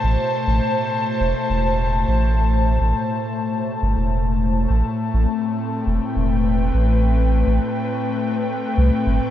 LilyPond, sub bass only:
\new Staff \with { instrumentName = "Sub bass" } { \clef bass \time 4/4 \key a \minor \tempo 4 = 103 a,,16 r8 a,,16 r4 e,,16 r16 e,,4 a,,8~ | a,,8. a,,16 r4. g,,16 e,,4~ e,,16 | a,,16 r8 a,,16 r4 e,,16 r16 e,,4 a,,8~ | a,,8. a,,16 r2 c,16 r16 g,,16 r16 | }